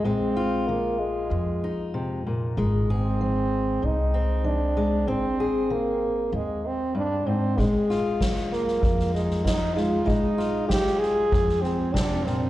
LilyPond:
<<
  \new Staff \with { instrumentName = "French horn" } { \time 4/4 \key bes \mixolydian \tempo 4 = 96 c'4 bes8 aes4. r4 | r8 c'4. ees'4 d'4 | c'4 bes4 aes8 c'8 d'8 c'8 | aes4 r8 bes4 aes8 ees'8 f'8 |
ees'4 g'8 aes'4 c'8 d'8 c'8 | }
  \new Staff \with { instrumentName = "Steel-string acoustic guitar" } { \clef bass \time 4/4 \key bes \mixolydian << { <aes f'>8 f'2 ees'4. | aes8 aes'2 c'4 aes8 | c'8 aes'2.~ aes'8 | aes8 f'2 ees'4 aes8 |
aes8 f'2.~ f'8 | } \\ { bes,4 ees4 f,4 c8 bes,8 | aes,4 f4 aes,4 f4 | aes,4 ees4 aes,4 g,8 aes,8 | bes,4 ees4 f,4 ees4 |
bes,4 ees4 f,4 c8 bes,8 | } >> }
  \new Staff \with { instrumentName = "Upright bass" } { \clef bass \time 4/4 \key bes \mixolydian bes,,2 f,2 | aes,,2 c,2 | aes,,2 ees,2 | bes,,2 f,2 |
bes,,2 f,2 | }
  \new DrumStaff \with { instrumentName = "Drums" } \drummode { \time 4/4 r4 r4 r4 r4 | r4 r4 r4 r4 | r4 r4 r4 r4 | <bd sn>8 sn8 <bd sn>16 sn16 sn16 sn16 <bd sn>16 sn16 sn16 sn16 <bd sn>8 sn8 |
<bd sn>8 sn8 <bd sn>16 sn16 sn8 <bd sn>16 sn16 sn8 <bd sn>8 sn8 | }
>>